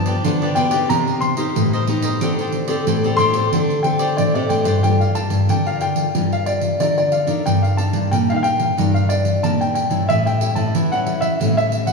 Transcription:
Already playing: G2 F3 B3 D4 A5
0.06 G4 B4 D5, pandeiro
0.24 D3 F3 B3 D4 F4 G4 B4 D5, pandeiro
0.42 G4 B4 D5, pandeiro
0.55 B2 F4 G4 B4 D5 G5, pandeiro
0.71 A#3 D#4 G4 B4 D5, pandeiro
0.89 C3 D#4 A#4 C5 D#5 A#5, pandeiro
1.07 pandeiro
1.21 C6, muted cavaquinho stroke, pandeiro
1.37 A#3 D#4 G4 A#4 C5 D#5, pandeiro
1.56 G2 A2, pandeiro
1.73 A#4 C5 D#5, pandeiro
1.87 A#3 D#4 G4 A#4 C5 D#5, pandeiro
2.02 A#4 C5 D#5, pandeiro
2.21 D3 C4 D4 G4 A4 C5 D5, pandeiro
2.39 G4 C5 D5, pandeiro
2.52 muted cavaquinho stroke, pandeiro
2.68 C4 G4 A4 C5 D5, pandeiro
2.86 A2 D4 G4 C5 D5, pandeiro
3.04 C4 G4 A4 C5 D5, pandeiro
3.17 A2 D4 G4 C5 C6, pandeiro
3.21 D5
3.33 C4 G4 A4 C5 D5, pandeiro
3.52 D3 C4 D4 G4 A4 C5 D5, pandeiro
3.70 pandeiro
3.83 C4 G4 A4 G5, muted cavaquinho stroke, pandeiro
3.99 G4 C5 D5, pandeiro
4.17 A2 D3 D5, pandeiro
4.34 C3 C4 G4 A4 C5 D5, pandeiro
4.49 A2 D4 G4 C5 D5 G5, pandeiro
4.64 G2 G4 C5 D5, pandeiro
4.83 G2 G3 D4 F4 A#4 G5, pandeiro
5.00 F5, pandeiro
5.15 D4 F4 A#4 A5, pandeiro
5.30 G2, pandeiro
5.49 D3 G5, pandeiro
5.66 D4 F4 A#4 F5, pandeiro
5.81 G5, pandeiro
5.96 pandeiro
6.15 G2 G3 D4 F4 A#4, pandeiro
6.32 F5, pandeiro
6.46 D5, pandeiro
6.61 pandeiro
6.80 D3 D4 F4 A#4 D5, pandeiro
6.98 D5, pandeiro
7.12 F5, pandeiro
7.27 D3 D4 D#4 A#4, pandeiro
7.46 G2 G3 G5, pandeiro
7.63 F5, pandeiro
7.77 D4 D#4 A#4 A5, pandeiro
7.93 G2, pandeiro
8.11 A#2 G3 G5, pandeiro
8.30 D4 D#4 A#4 F5 G5, pandeiro
8.36 F5
8.43 G5, pandeiro
8.60 pandeiro
8.78 G2 G3 D4 D#4 A#4, pandeiro
8.94 F5, pandeiro
9.09 D5, pandeiro
9.25 pandeiro
9.43 A#2 G3 D4 D#4 A#4 A5, pandeiro
9.61 G5, pandeiro
9.75 G5, pandeiro
9.90 G2 G3 C#4 E4, pandeiro
10.09 A2 E5, pandeiro
10.26 G5, pandeiro
10.41 G3 C#4 E4, pandeiro
10.55 A2 A5, pandeiro
10.75 E3, pandeiro
10.92 G3 C#4 E4 F#5, pandeiro
11.07 pandeiro
11.21 E5, pandeiro
11.40 A2 G3 C#4 E4, pandeiro
11.57 E5, pandeiro
11.72 pandeiro
11.87 F#5, pandeiro

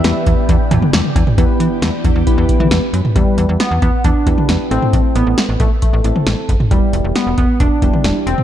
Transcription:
Already playing: E3 B3 D4 G4 E5
0.04 E2 B3 E4 G4 B4, snare, closed hi-hat
0.26 E2, kick, closed hi-hat
0.49 E2, kick, closed hi-hat
0.71 E2, closed hi-hat, mid tom, cowbell
0.82 mid tom
0.93 E2, snare, closed hi-hat
1.04 mid tom
1.16 E2, kick, closed hi-hat, cowbell
1.27 mid tom
1.38 E2 E3 B3 D4 E4 G4 B4, kick, closed hi-hat
1.60 E3, closed hi-hat
1.82 E2, snare, closed hi-hat
2.04 E2, kick, closed hi-hat
2.16 E2
2.27 B3 E4 G4 B4, kick, closed hi-hat
2.38 E2
2.49 kick, closed hi-hat
2.60 E3, mid tom
2.71 E2, snare, closed hi-hat
2.93 F#2, closed hi-hat
3.05 mid tom
3.16 E2 G3 B3 E4 G4 B4, kick, closed hi-hat
3.38 E2, closed hi-hat
3.49 E2
3.60 B3, snare, closed hi-hat
3.71 E2
3.82 E2 B3, kick, closed hi-hat
4.04 E2 D4, kick, closed hi-hat
4.27 E2 B3 E4 G4 B4, kick, closed hi-hat
4.38 mid tom
4.49 E2, snare, closed hi-hat
4.71 A1 A3 C4 E4 A4, closed hi-hat
4.82 mid tom
4.93 A1, kick, closed hi-hat
5.15 A1 B3, closed hi-hat
5.27 A1
5.38 snare, closed hi-hat
5.49 A1
5.60 A1 A3, kick, closed hi-hat
5.82 A3, kick, closed hi-hat
5.93 A1
6.04 A1 A3 C4 E4 A4, closed hi-hat
6.16 mid tom
6.27 A1, snare, closed hi-hat
6.49 F#1, kick, closed hi-hat
6.60 mid tom
6.71 E1 G3 B3 E4 G4, kick, closed hi-hat
6.93 E1, closed hi-hat
7.04 E1
7.15 B3, snare, closed hi-hat
7.27 E1
7.38 E1 B3, kick, closed hi-hat
7.60 E1 D4, kick, closed hi-hat
7.82 E1 G3 B3 E4 G4, kick, closed hi-hat
7.93 mid tom
8.04 E1, snare, closed hi-hat
8.27 E1 C4, closed hi-hat
8.38 mid tom

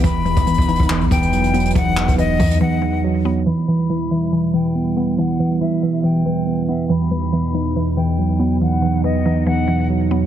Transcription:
0.04 E1 E2 E3 B3 D#4 B5, kick, closed hi-hat
0.25 E2 E3, closed hi-hat
0.37 E1, kick, closed hi-hat
0.47 E3 B3, closed hi-hat
0.54 closed hi-hat
0.58 E1, kick, closed hi-hat
0.68 E3 D#4, closed hi-hat
0.75 closed hi-hat
0.80 E1, kick, closed hi-hat
0.90 E2 E3, clap, closed hi-hat
1.01 B1, closed hi-hat
1.11 E1 E2 E3 G5, kick, closed hi-hat
1.22 closed hi-hat
1.33 F#3, closed hi-hat
1.44 closed hi-hat
1.54 F#3 B3, closed hi-hat
1.60 closed hi-hat
1.65 closed hi-hat
1.70 closed hi-hat
1.75 E1 E2 E3 F#5, kick, closed hi-hat
1.96 E2 E3, clap, closed hi-hat
2.08 E1, kick, closed hi-hat
2.18 E3 B3 D#5, closed hi-hat
2.40 E2 E3 D#4, kick, open hi-hat
2.51 closed hi-hat
2.61 E2 E3 F#5
2.82 E2 E3
3.04 F#3
3.25 F#3 B3
3.46 E2 B2 E3 G3 B5
3.68 E3
3.90 E3 E4
4.11 E3 E5
4.32 E3
4.54 E3 G5
4.75 B3
4.97 B3
5.18 E3 F#5
5.40 E3
5.61 E3 E4 E5
5.83 E3 E5
6.04 E3 G5
6.25 E3
6.47 B3
6.68 B3 E5
6.90 E2 E3 D#4 B5
7.11 E2 E3
7.32 E3 B3
7.54 E3 D#4
7.75 E2 E3
7.97 E2 E3 G5
8.18 F#3
8.39 F#3 B3
8.61 E2 E3 F#5
8.82 E2 E3
9.04 E3 B3 D#5
9.25 E3 D#4
9.47 E2 E3 F#5
9.68 E2 E3
9.90 F#3
10.11 F#3 B3

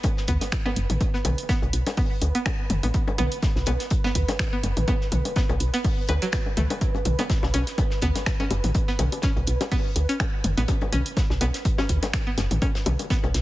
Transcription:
Already playing: B4
0.03 kick, closed hi-hat, low bongo
0.17 snare
0.28 D2 B3, kick, closed hi-hat
0.41 snare, closed hi-hat, low bongo
0.52 finger snap, kick, snare, closed hi-hat
0.66 B3, low bongo
0.76 F#1, closed hi-hat
0.90 A1, closed hi-hat, mid tom
1.01 kick, closed hi-hat, low bongo
1.14 B3, snare
1.25 B1, closed hi-hat, mid tom, low bongo
1.38 closed hi-hat
1.49 B3, kick, snare, closed hi-hat
1.62 B1, closed hi-hat, low bongo
1.73 B1, closed hi-hat
1.87 snare, closed hi-hat, low bongo
1.97 B3, kick, closed hi-hat, open hi-hat
2.21 D2, closed hi-hat, low bongo
2.35 B3, closed hi-hat
2.46 finger snap, kick, closed hi-hat, low bongo
2.70 F#1, closed hi-hat, mid tom
2.83 A1 B3, closed hi-hat, low bongo
2.94 kick, closed hi-hat
3.08 closed hi-hat, low bongo
3.18 B1 B3, closed hi-hat, mid tom
3.32 closed hi-hat
3.42 kick, snare, closed hi-hat, low bongo
3.56 B1, snare
3.66 B1 B3, closed hi-hat, low bongo
3.80 snare, closed hi-hat
3.90 kick, closed hi-hat
4.04 B3, snare, low bongo
4.15 D2, kick, closed hi-hat
4.28 snare, closed hi-hat, low bongo
4.39 finger snap, kick, snare, closed hi-hat
4.53 B3
4.63 F#1, closed hi-hat, low bongo
4.77 A1, closed hi-hat, mid tom
4.88 B3, kick, closed hi-hat, low bongo
5.01 snare
5.12 B1, closed hi-hat, mid tom
5.25 closed hi-hat, low bongo
5.36 B3, kick, snare, closed hi-hat
5.49 B1, closed hi-hat, low bongo
5.60 B1, closed hi-hat
5.73 B3, snare, closed hi-hat
5.84 kick, closed hi-hat, open hi-hat, low bongo
6.07 D2 B4, closed hi-hat, low bongo
6.22 F#3, closed hi-hat
6.32 finger snap, kick, snare, closed hi-hat
6.46 low bongo
6.57 C#2 A3, closed hi-hat, mid tom
6.70 closed hi-hat, low bongo
6.81 kick, closed hi-hat
6.95 closed hi-hat, high bongo, low bongo
7.05 B1, closed hi-hat, mid tom
7.19 B3, closed hi-hat, low bongo
7.30 kick, snare, closed hi-hat
7.43 B1, snare, high bongo
7.54 B1 C#4, closed hi-hat, low bongo
7.67 snare, closed hi-hat
7.78 kick, closed hi-hat, low bongo
7.90 snare
8.02 D2 B3, kick, closed hi-hat, high bongo
8.16 snare, closed hi-hat, low bongo
8.26 finger snap, kick, snare, closed hi-hat
8.40 C#4, low bongo
8.51 F#1, closed hi-hat, high bongo
8.64 A1, closed hi-hat, mid tom
8.75 kick, closed hi-hat, low bongo
8.88 B3, snare
8.99 B1, closed hi-hat, mid tom, low bongo
9.12 closed hi-hat, high bongo
9.22 C#4, kick, snare, closed hi-hat
9.37 B1, closed hi-hat, low bongo
9.47 B1, closed hi-hat
9.61 snare, closed hi-hat, high bongo, low bongo
9.72 B3, kick, closed hi-hat, open hi-hat
9.96 D2, closed hi-hat, low bongo
10.09 C#4, closed hi-hat
10.20 finger snap, kick, closed hi-hat, high bongo, low bongo
10.44 F#1, closed hi-hat, mid tom
10.57 A1 B3, closed hi-hat, low bongo
10.68 kick, closed hi-hat, high bongo
10.81 closed hi-hat, low bongo
10.93 B1 C#4, closed hi-hat, mid tom
11.06 closed hi-hat
11.17 kick, snare, closed hi-hat, low bongo
11.30 B1, snare, high bongo
11.41 B1 B3, closed hi-hat, low bongo
11.54 snare, closed hi-hat
11.65 kick, closed hi-hat
11.78 C#4, snare, high bongo, low bongo
11.89 D2, kick, closed hi-hat
12.03 snare, closed hi-hat, low bongo
12.13 finger snap, kick, snare, closed hi-hat
12.27 B3
12.38 F#1, snare, closed hi-hat, high bongo, low bongo
12.51 A1, closed hi-hat, mid tom
12.62 C#4, kick, closed hi-hat, low bongo
12.75 snare, closed hi-hat
12.86 B1, closed hi-hat, mid tom, high bongo
12.99 closed hi-hat, low bongo
13.10 B3, kick, snare, closed hi-hat
13.24 B1, closed hi-hat, low bongo
13.34 B1, snare, closed hi-hat

